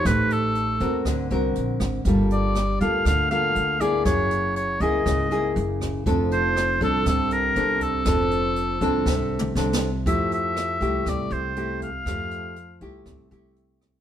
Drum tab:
HH |x--x--x--x--x--x--x--x--|x--x--x--x--x--x--x--x--|x--x--x--x--x--x--x--x--|x--x--x--x--x--x--x--x--|
SD |r-----------r--------r--|------r-----r-----------|r-----------r--------r--|------r-----r-----------|
T2 |------------------------|------------------------|------------------------|------------------------|
BD |o--------o--o--------o--|o--------o--o--------o--|o--------o--o--------o--|o--------o--o--------o--|

HH |x--x--x--x--------------|x--x--x--x--x--x--x--x--|x--x--x--x--x--x--x--x--|
SD |r-----------o-----o-o---|------r-----r-----------|r-----------r--------r--|
T2 |----------------o-------|------------------------|------------------------|
BD |o--------o--o-----------|o--------o--o--------o--|o--------o--o--------o--|